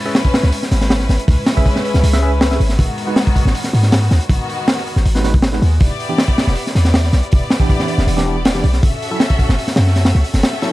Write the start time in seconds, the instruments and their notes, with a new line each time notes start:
Already playing: string section G#3 C#4 E4 B4
0.06 tine electric piano C#4 G#4 B4 E5
0.15 snare, open hi-hat
0.25 kick
0.34 snare, open hi-hat
0.43 808-style bass C#2, snare
0.52 open hi-hat
0.63 snare
0.71 808-style bass G#1, string section G#3 C#4 E4 B4, snare, open hi-hat
0.81 snare
0.90 snare, open hi-hat
1.00 snare
1.09 808-style bass G#1, snare, open hi-hat
1.19 closed hi-hat
1.28 808-style bass C#2, string section G#3 C#4 E4 B4, kick, open hi-hat
1.46 snare, open hi-hat
1.57 tine electric piano C#4 G#4 B4 E5, kick
1.66 kick, open hi-hat
1.76 snare
1.85 open hi-hat
1.94 808-style bass C#2, snare
2.03 808-style bass C#2, open hi-hat
2.13 tine electric piano C#4 G#4 B4 E5, snare
2.22 string section G#3 C#4 E4 B4, tine electric piano C#4 G#4 B4 E5
2.41 snare, open hi-hat
2.51 tine electric piano C#4 G#4 B4 E5, snare
2.60 808-style bass G#1, open hi-hat
2.69 snare
2.79 808-style bass G#1, string section D#3 G#3 B3 F#4, kick, open hi-hat
2.98 open hi-hat
3.07 tine electric piano G#3 D#4 F#4 B4
3.16 snare, open hi-hat
3.27 kick
3.36 kick, open hi-hat
3.45 808-style bass G#1, snare
3.55 open hi-hat
3.64 snare
3.73 808-style bass G#2, string section D#3 G#3 B3 F#4, open hi-hat
3.83 snare
3.92 snare, open hi-hat
4.02 snare
4.11 808-style bass D#2, snare, open hi-hat
4.20 closed hi-hat
4.29 808-style bass G#1, string section D#3 G#3 B3 F#4, kick, open hi-hat
4.50 open hi-hat
4.68 snare, open hi-hat
4.77 snare
4.87 open hi-hat
4.96 808-style bass G#1, snare
5.05 808-style bass G#1, open hi-hat
5.15 tine electric piano G#3 D#4 F#4 B4, snare
5.24 tine electric piano G#3 D#4 F#4 B4, snare, open hi-hat
5.34 kick
5.42 snare, open hi-hat
5.53 string section D#3 G#3 B3 F#4, tine electric piano G#3 D#4 F#4 B4, snare
5.62 808-style bass D#2, string section D#3 G#3 B3 F#4, open hi-hat
5.80 808-style bass E1, string section B3 E4 G4 D5, kick, open hi-hat
6.00 open hi-hat
6.09 tine electric piano E3 B3 D4 G4
6.18 snare, open hi-hat
6.28 kick
6.38 snare, open hi-hat
6.47 808-style bass E1, snare
6.55 open hi-hat
6.67 snare
6.75 808-style bass E2, string section B3 E4 G4 D5, snare, open hi-hat
6.85 snare
6.94 snare, open hi-hat
7.04 snare
7.13 808-style bass B1, snare, open hi-hat
7.23 closed hi-hat
7.31 808-style bass E1, string section B3 E4 G4 D5, kick, open hi-hat
7.50 snare, open hi-hat
7.60 tine electric piano E3 B3 D4 G4, kick
7.69 kick, open hi-hat
7.79 snare
7.88 open hi-hat
7.98 808-style bass E1, snare
8.07 808-style bass E1, open hi-hat
8.17 tine electric piano E3 B3 D4 G4, snare
8.26 tine electric piano E3 B3 D4 G4, string section B3 E4 G4 D5
8.45 snare, open hi-hat
8.55 tine electric piano E3 B3 D4 G4, snare
8.64 808-style bass B1, open hi-hat
8.73 snare
8.83 808-style bass F#1, string section C#4 F#4 A4 E5, kick, open hi-hat
9.02 open hi-hat
9.11 tine electric piano F#3 C#4 E4 A4
9.20 snare, open hi-hat
9.30 kick
9.39 kick, open hi-hat
9.49 808-style bass F#1, snare
9.59 open hi-hat
9.67 snare
9.76 808-style bass F#2, string section C#4 F#4 A4 E5, snare, open hi-hat
9.87 snare
9.96 snare, open hi-hat
10.05 snare, open hi-hat
10.15 808-style bass C#2, snare
10.24 open hi-hat
10.33 808-style bass F#1, string section C#4 F#4 A4 E5, snare, open hi-hat
10.43 snare, open hi-hat
10.53 snare
10.61 tine electric piano F#3 C#4 E4 A4, snare, open hi-hat